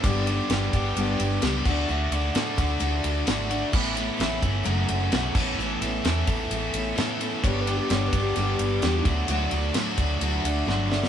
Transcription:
<<
  \new Staff \with { instrumentName = "Electric slide guitar" } { \time 4/4 \key d \major \tempo 4 = 130 r1 | r1 | r1 | r1 |
\tuplet 3/2 { cis''8 b'8 g'8 cis''8 b'8 g'8 } g'4. r8 | r1 | }
  \new Staff \with { instrumentName = "Steel-string acoustic guitar" } { \time 4/4 \key d \major <g, d g b d' g'>8 <g b d' g'>8 <g b d' g'>8 <g b d' g'>8 <g, d g b d' g'>8 <g b d' g'>8 <g b d' g'>8 <a d' fis'>8 | <d a d' fis'>8 <a d' fis'>8 <d a d' fis'>8 <a d' fis'>8 <d a d' fis'>8 <a d' fis'>8 <d a d' fis'>8 <a d' fis'>8 | <a, e b cis' e'>8 <b cis' e'>8 <e b cis' e'>8 <b cis' e'>8 <fis, cis fis a cis' fis'>8 <fis a cis' fis'>8 <fis a cis' fis'>8 <b cis' e'>8 | <a, e b cis' e'>8 <b cis' e'>8 <e b cis' e'>8 <b cis' e'>8 <a, e b cis' e'>8 <b cis' e'>8 <e b cis' e'>8 <b cis' e'>8 |
<g, d g b d' g'>8 <g b d' g'>8 <g b d' g'>8 <g b d' g'>8 <g, d g b d' g'>8 <g b d' g'>8 <g b d' g'>8 <a d' fis'>8 | <d fis a d' fis'>8 <a d' fis'>8 <fis a d' fis'>8 <a d' fis'>8 <d fis a d' fis'>8 <a d' fis'>8 <fis a d' fis'>8 <a d' fis'>8 | }
  \new Staff \with { instrumentName = "Overdriven electric guitar" } { \time 4/4 \key d \major <g, d g b d' g'>8 <g b d' g'>8 <g b d' g'>8 <g b d' g'>4. <g, d g b d' g'>8 <d a d' fis'>8 | <d a d' fis'>8 <a d' fis'>8 <d a d' fis'>8 <a d' fis'>4. <d a d' fis'>8 <a d' fis'>8 | <a, e a cis' e'>8 <a cis' e'>8 <e a cis' e'>8 <a cis' e'>8 <fis, cis fis a cis' fis'>4 <fis, cis fis a cis' fis'>8 <a, e a cis' a'>8 | <a, e a cis' a'>8 <a cis' a'>8 <e a cis' a'>8 <a cis' a'>4. <a, e a cis' a'>8 <a cis' a'>8 |
<g, d g b d' g'>8 <g b d' g'>8 <g b d' g'>8 <g b d' g'>4. <g, d g b d' g'>8 <d fis a d' fis'>8 | <d fis a d' fis'>8 <a d' fis'>8 <fis a d' fis'>8 <a d' fis'>4. <d fis a d' fis'>8 <a d' fis'>8 | }
  \new Staff \with { instrumentName = "Fingered electric bass" } { \clef bass \time 4/4 \key d \major g,,4 g,,8 g,,8 g,,8 g,,8 cis,8 d,8 | d,8 d,8 a,8 d,8 d,8 d,8 gis,,4 | a,,4 a,,8 g,,8 fis,,8 fis,,8 b,,8 a,,8 | a,,8 a,,8 e,8 a,,8 a,,8 a,,8 a,4 |
g,,4 g,,8 g,,8 g,,8 g,,8 e,8 d,8 | d,8 d,8 a,8 d,8 d,8 d,8 g,,4 | }
  \new DrumStaff \with { instrumentName = "Drums" } \drummode { \time 4/4 <bd cymr>8 cymr8 <cymr sn>8 <bd cymr>8 cymr8 cymr8 <cymr sn>8 <cymc bd>8 | r8 cymr8 <cymr sn>8 <bd cymr>8 cymr8 cymr8 <cymr sn>8 cymr8 | <cymc bd>8 cymr8 <cymr sn>8 <bd cymr>8 cymr8 cymr8 <cymr sn>8 <cymc bd>8 | r8 cymr8 <cymr sn>8 <bd cymr>8 cymr8 cymr8 <cymr sn>8 cymr8 |
<bd cymr>8 cymr8 <cymr sn>8 <bd cymr>8 cymr8 cymr8 <cymr sn>8 <bd cymr>8 | cymr8 cymr8 <cymr sn>8 <bd cymr>8 cymr8 cymr8 sn8 sn16 sn16 | }
>>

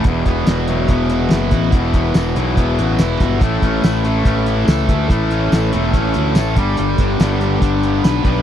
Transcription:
<<
  \new Staff \with { instrumentName = "Distorted electric guitar" } { \time 4/4 \key e \dorian \tempo 4 = 143 e,8 b8 fis'8 fis8 b8 fis'8 e'8 fis'8 | e,8 b8 fis'8 fis8 b8 fis'8 e'8 fis'8 | a,8 cis'8 e'8 a8 cis'8 e'8 a'8 e'8 | a,8 cis'8 e'8 a8 cis'8 e'8 a'8 g8 |
g8 d'8 b8 g8 d'8 b8 b'8 b8 | }
  \new Staff \with { instrumentName = "Distorted electric guitar" } { \clef bass \time 4/4 \key e \dorian <e, b, e>4. <e, b, e>2~ <e, b, e>8 | <e, b, e>4. <e, b, e>2~ <e, b, e>8 | <a, e a>4. <a, e a>2~ <a, e a>8 | <a, e a>4. <a, e a>2 <g, d g>8~ |
<g, d g>4 <g, d g>2~ <g, d g>8 <g, d g>8 | }
  \new Staff \with { instrumentName = "Fingered electric bass" } { \clef bass \time 4/4 \key e \dorian e,,8 e,,8 e,,4 e,,4 fis,,8 a,,8 | e,,4 e,,8 b,,8 e,,8 a,,8 e,,8 g,,8 | a,,8 a,,8 a,,4 a,,4 cis,8 d,8 | a,,4 a,,8 e,,8 a,,8 d,8 a,,8 g,,8 |
g,,8 g,,8 g,,4 g,,4 b,,8 b,,8 | }
  \new DrumStaff \with { instrumentName = "Drums" } \drummode { \time 4/4 <hh bd>8 <hh bd>8 <hh sn tamb>8 hh8 <hh bd>8 hh8 <hh sn tamb>8 <hh bd>8 | <hh bd>8 <hh bd>8 <hh sn tamb>8 hh8 <hh bd>8 hh8 <hh sn tamb>8 <hh bd sn>8 | <hh bd>8 <hh bd>8 <hh sn tamb>8 hh8 <hh bd>8 hh8 <hh sn tamb>8 <hh bd>8 | <hh bd>8 hh8 <hh sn tamb>8 hh8 <hh bd>8 hh8 <hh sn tamb>8 <hh bd>8 |
hh8 <hh bd>8 <hh sn tamb>8 hh8 <hh bd>8 hh8 <hh sn tamb>8 <hh bd>8 | }
>>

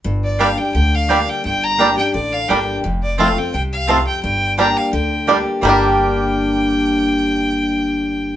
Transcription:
<<
  \new Staff \with { instrumentName = "Fiddle" } { \time 4/4 \key g \minor \tempo 4 = 172 r8 d''8 f''8 g''8 g''8 f''4 g''8 | g''8 bes''4 g''8 d''8 f''8 g''8. r16 | r8 d''8 f''8 g''8 g''8 f''4 g''8 | g''4 bes''8 f''8 g''4. r8 |
g''1~ | g''1 | }
  \new Staff \with { instrumentName = "Mandolin" } { \time 4/4 \key g \minor r4 <bes g' d'' g''>16 r4. r16 <bes g' d'' g''>16 r8. | r4 <bes g' d'' g''>16 r4. r16 <bes g' d'' g''>16 r8. | r4 <c' f' c'' a''>16 r4. r16 <c' f' c'' a''>16 r8. | r4 <bes g' d'' g''>16 r4. r16 <bes g' d'' g''>16 r8. |
<bes g' d'' g''>1~ | <bes g' d'' g''>1 | }
  \new Staff \with { instrumentName = "Five-string banjo" } { \time 4/4 \key g \minor r4 <g d'>8 r4. <g d'>8 r8 | r4 <g d'>8 r4. <g d'>8 r8 | r4 <a c' f'>8 r4. <a c' f'>8 r8 | r4 <g d'>8 r4. <g d'>8 r8 |
<g bes d' g'>1~ | <g bes d' g'>1 | }
  \new Staff \with { instrumentName = "Steel-string acoustic guitar" } { \time 4/4 \key g \minor << { r4 <g bes d' g'>8 <d' g'>8 r4 <g bes d' g'>4 | r4 <g bes d' g'>8 <d' g'>8 r4 <g bes d' g'>4 | r4 <f a c' f'>8 <c' f'>8 r2 | r4 <g bes d' g'>4 r4 <g bes d' g'>4 |
<g, d g bes d' g'>1~ | <g, d g bes d' g'>1 | } \\ { g,2 d2 | g,2 d2 | f,2 c4 f,4 | g,2 d2 |
r1 | r1 | } >> }
  \new Staff \with { instrumentName = "Upright bass" } { \clef bass \time 4/4 \key g \minor g,,2 d,2 | g,,2 a,,4 g,,4 | f,,2 c,2 | g,,2 d,2 |
g,,1~ | g,,1 | }
>>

